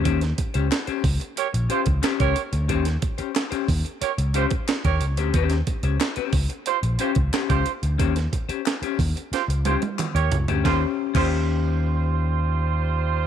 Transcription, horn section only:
X:1
M:4/4
L:1/16
Q:1/4=90
K:Ebmix
V:1 name="Horn section"
z8 [GBd] z [FGc] z2 [GBd]2 z | z8 [GBd] z [FGc] z2 [GBd]2 z | z8 [FGc] z [FGc] z2 [FGc]2 z | z8 [FGc] z [FGc] z2 [GBd]2 z |
[G,Fc] z2 [G,Fc]12- [G,Fc] |]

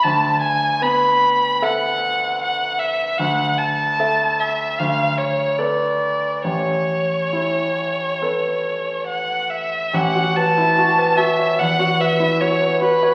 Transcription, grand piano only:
X:1
M:4/4
L:1/16
Q:1/4=74
K:A
V:1 name="Grand piano"
D,,4 B,4 [Ae]8 | D,,4 [Ae]4 D,,4 [AB]4 | A,,,4 E4 [AB]8 | A,,, F B E F B F c E,, F B E F B F c |]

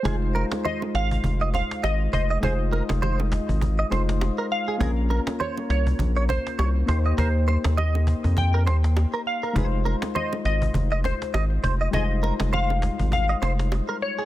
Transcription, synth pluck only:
X:1
M:4/4
L:1/8
Q:"Swing 16ths" 1/4=101
K:Fm
V:1 name="Synth pluck"
c z e f2 f e e | c4 z3 f- | f z d d2 c3 | c2 e2 g3 f- |
f z e e2 c3 | e2 f2 f3 d |]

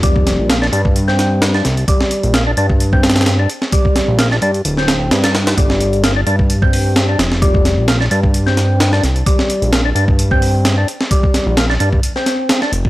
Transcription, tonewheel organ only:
X:1
M:4/4
L:1/16
Q:"Swing 16ths" 1/4=130
K:Gm
V:1 name="Tonewheel organ"
G,4 B, D D z2 C4 D z2 | G,4 B, D D z2 C4 D z2 | G,4 B, D D z2 C4 D z2 | G,4 B, D D z2 C4 D z2 |
G,4 B, D D z2 C4 D z2 | G,4 B, D D z2 C4 D z2 | G,4 B, D D z2 C4 D z2 |]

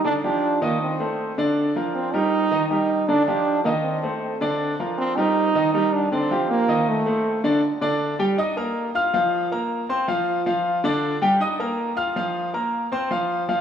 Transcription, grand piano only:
X:1
M:4/4
L:1/8
Q:1/4=158
K:Eblyd
V:1 name="Grand piano"
[D,Dd] [F,FG]2 [E,Ee]2 [A,Ac]2 [D,Dd]- | [D,Dd] [F,FB]2 [G,GB]2 [E,Ee] [G,GB]2 | [D,Dd] [F,FG]2 [E,Ee]2 [A,Ac]2 [D,Dd]- | [D,Dd] [F,FB]2 [G,GB]2 [E,Ee] [G,GB]2 |
[D,Dd] [F,FG]2 [E,Ee]2 [A,Ac]2 [D,Dd] | z [D,Dd]2 [G,Gg] [Eee'] [B,Bb]2 [Fff'] | [F,Ff]2 [B,Bb]2 [Ccc'] [F,Ff]2 [F,Ff]- | [F,Ff] [D,Dd]2 [G,Gg] [Eee'] [B,Bb]2 [Fff'] |
[F,Ff]2 [B,Bb]2 [Ccc'] [F,Ff]2 [F,Ff] |]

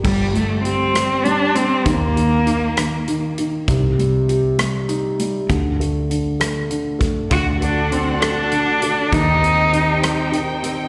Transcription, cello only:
X:1
M:6/8
L:1/8
Q:3/8=66
K:Gm
V:1 name="Cello"
G, A, C2 D C | B,4- B, z | z6 | z6 |
^F D C D3 | E4 z2 |]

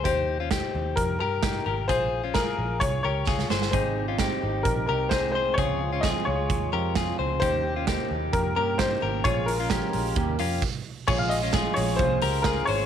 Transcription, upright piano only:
X:1
M:4/4
L:1/16
Q:1/4=130
K:Bbdor
V:1 name="Upright piano"
c8 B2 B6 | c4 B4 d2 d4 z2 | c8 B2 B2 c2 c2 | d4 e2 d8 z2 |
c6 z2 B2 B2 c4 | d2 B8 z6 | d f e4 d2 c4 B2 d2 |]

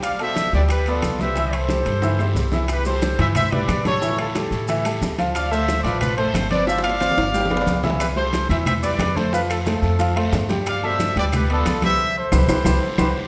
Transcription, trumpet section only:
X:1
M:4/4
L:1/8
Q:1/4=181
K:C
V:1 name="Trumpet section"
[df] [ce]2 [Bd] [GB] [FA]2 [ce]- | [ce] [Ac]6 z | [GB] [Ac]2 [ce] [ce] [Bd]2 [A_d]- | [A_d] [FA] [EA]4 z2 |
[df] [ce]2 [Bd] [FB] [Ac]2 [Bd] | [ce] [df]6 z | [GB] [Ac]2 [ce] [ce] [Bd]2 [Ac] | [FB] [FA] [FA]4 z2 |
[df] [ce]2 [Bd] [GB] [FA]2 [ce]- | [ce] [Ac]4- [Ac] [Gc]2 |]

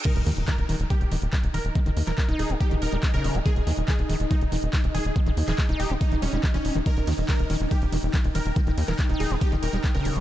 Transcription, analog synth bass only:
X:1
M:4/4
L:1/16
Q:1/4=141
K:Eb
V:1 name="Analog synth bass" clef=bass
z E,,, E,, E,,, z E,,, E,,, E,,, z E,,, E,,, E,,, z E,,, E,,, E,,, | z E,,, E,, E,,, z E,,, E,,, E,,, z E,,, E,,, E,,, z E,,, E,,, E,,, | z E,,, E,, E,,, z E,,, E,,, E,,, z E,,, E,,, E,,, z E,,, E,,, E,,, | z E,,, E,, E,,, z E,,, E,,, E,,, z E,,, E,,, E,,, z E,,, E,,, E,,, |
z E,,, E,, E,,, z E,,, E,,, E,,, z E,,, E,,, E,,, z E,,, E,,, E,,, | z E,,, E,, E,,, z E,,, E,,, E,,, z E,,, E,,, E,,, z E,,, E,,, E,,, |]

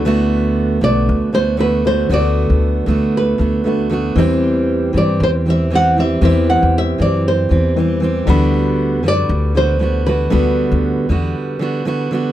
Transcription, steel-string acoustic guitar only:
X:1
M:4/4
L:1/8
Q:"Swing 16ths" 1/4=117
K:G
V:1 name="Steel-string acoustic guitar"
[D,A,B,F]3 [D,A,B,F]2 [D,A,B,F] [D,A,B,F] [D,A,B,F] | [D,A,B,F]3 [D,A,B,F]2 [D,A,B,F] [D,A,B,F] [D,A,B,F] | [E,G,CG]3 [E,G,CG]2 [E,G,CG] [E,G,CG] [E,G,CG] | [E,G,CG]3 [E,CG]2 [E,G,CG] [E,G,CG] [E,G,CG] |
[D,G,B,F]3 [D,G,B,F]2 [D,G,B,F] [D,G,B,F] [D,G,B,F] | [D,G,B,F]3 [D,G,B,F]2 [D,G,B,F] [D,G,B,F] [D,G,B,F] |]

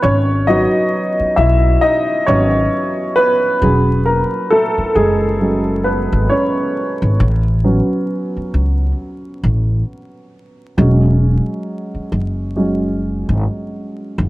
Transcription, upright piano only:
X:1
M:4/4
L:1/16
Q:"Swing 16ths" 1/4=67
K:E
V:1 name="Upright piano"
[Cc]2 [Dd]4 [Ee]2 [Dd]2 [Cc]4 [B,B]2- | [B,B]2 [^A,^A]2 [=A,=A]2 [G,G]4 [B,B]2 [Cc]3 z | z16 | z16 |]
V:2 name="Upright piano"
z2 [F,B,F]6 z2 [F,B,D]2 z4 | [F,CG]6 z2 [F,G,C]2 z6 | z2 [F,B,C]2 z12 | [F,G,C]6 z2 [F,G,C]2 z6 |]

